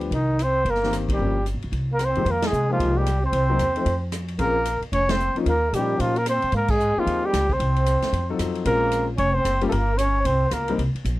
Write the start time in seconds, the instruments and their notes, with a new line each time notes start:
Already playing: grand piano F3 B3 D4 G4
0.01 ride
0.11 upright bass C2, trombone D#3, trumpet D#4, kick, ride
0.39 trombone C4, hi-hat pedal, ride
0.43 trumpet C5
0.65 upright bass G1, trombone A#3, kick, ride
0.70 trumpet A#4
0.75 snare
0.83 grand piano D#3 A#3 C4 G4, snare
0.93 cross-stick, hi-hat pedal, ride
1.09 trombone G3, kick, ride
1.14 trumpet G4
1.19 upright bass G1, grand piano F3 A#3 C#4 G4
1.46 hi-hat pedal, ride
1.54 upright bass A#1
1.62 upright bass C#2, ride
1.72 upright bass C2, kick, ride
1.92 trombone A#3, trumpet A#4
1.99 trombone C4, cross-stick, hi-hat pedal, ride
2.05 trumpet C5
2.15 grand piano F2 D#3 G#3 A#3 G4, upright bass F#2, ride
2.25 upright bass F2, trombone A#3, kick, ride
2.31 trumpet A#4
2.42 trombone G#3, snare, ride
2.47 trumpet G#4
2.52 upright bass C3, hi-hat pedal
2.70 grand piano F3 G#3 A#3 D#4 G4, trombone F3, trumpet F4
2.79 upright bass C2, kick, ride
2.96 trombone G3, trumpet G4
3.06 cross-stick, hi-hat pedal, ride
3.23 trombone C4, trumpet C5
3.32 upright bass C2, kick, ride
3.50 grand piano F#3 A#3 C4 D#4 A#4
3.59 upright bass E2, hi-hat pedal, ride
3.76 grand piano F3 A3 C4 D#4 A4, ride
3.86 upright bass F2, kick, ride
4.12 cross-stick, hi-hat pedal, ride
4.28 ride
4.38 upright bass A#1, grand piano F3 A#3 C4 C#4 G#4, trombone A#3, trumpet A#4, kick, ride
4.65 hi-hat pedal, ride
4.81 muted upright bass stroke, ride
4.92 upright bass F1, trombone C#4, trumpet C#5, kick, ride
5.08 trombone C4, trumpet C5, snare, ride
5.20 hi-hat pedal
5.35 grand piano F3 A#3 C#4 D#4 F4, muted upright bass stroke, ride
5.46 upright bass D#2, trombone A#3, trumpet A#4, kick, ride
5.73 upright bass A#2, grand piano F3 A#3 C#4 D#4 G4, trombone G3, trumpet G4, hi-hat pedal, ride
5.99 upright bass A#2, trombone F3, trumpet F4, kick, ride
6.16 trombone A#3, trumpet A#4, ride
6.26 trombone C4, trumpet C5, cross-stick, hi-hat pedal, ride
6.42 upright bass A#2, ride
6.52 upright bass G#2, trombone A#3, kick, ride
6.57 trumpet A#4
6.68 trombone G#3, trumpet G#4, kick, crash
6.80 hi-hat pedal
6.97 trombone F3, grand piano A#3 C4 D#4 G4 G#4, trumpet F4, muted upright bass stroke
7.06 upright bass D#2, kick, ride
7.25 trombone G3, trumpet G4
7.33 upright bass C#2, cross-stick, snare, hi-hat pedal, ride
7.49 trombone C4, trumpet C5, kick
7.60 upright bass C2, kick, ride
7.76 ride
7.86 hi-hat pedal, ride
8.02 muted upright bass stroke, snare, ride
8.12 upright bass F2, kick, ride
8.30 grand piano F#3 C4 D#4 F4 A4
8.39 upright bass F2, cross-stick, hi-hat pedal, ride
8.55 ride
8.65 upright bass A#1, grand piano G#3 C4 C#4 F4 A#4, trombone A#3, trumpet A#4, kick, ride
8.91 hi-hat pedal, ride
9.17 upright bass F1, trombone C#4, trumpet C#5, kick, ride
9.32 trombone C4, trumpet C5
9.45 upright bass F#1, cross-stick, hi-hat pedal, ride
9.61 grand piano G3 A#3 C#4 F4 G4, ride
9.67 trombone A3 A#3, trumpet A4 A#4
9.72 upright bass G1, kick, ride
9.97 trombone C#4, trumpet C#5, hi-hat pedal, ride
10.23 upright bass C2, trombone C4, trumpet C5, kick, ride
10.50 upright bass C#2, trombone A#3, trumpet A#4, cross-stick, hi-hat pedal, ride
10.68 grand piano G3 A#3 C4 D#4 A#4, ride
10.78 upright bass C2, kick, ride
10.95 muted upright bass stroke, ride
11.04 upright bass A#1, kick, hi-hat pedal, ride